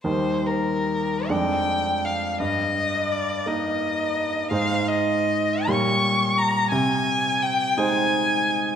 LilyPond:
<<
  \new Staff \with { instrumentName = "Violin" } { \time 6/8 \key ees \major \tempo 4. = 57 c''8 bes'4 g''4 f''8 | ees''4 d''8 ees''4. | f''8 ees''4 des'''4 bes''8 | aes''4 g''8 aes''4. | }
  \new Staff \with { instrumentName = "Grand piano" } { \time 6/8 \key ees \major <ees, g ees' bes'>4. <f, aes d' d''>4. | g,4. <bes ees' bes'>4. | <aes, aes ees' c''>4. <bes, g g' des''>4. | c4. <aes ees' c''>4. | }
>>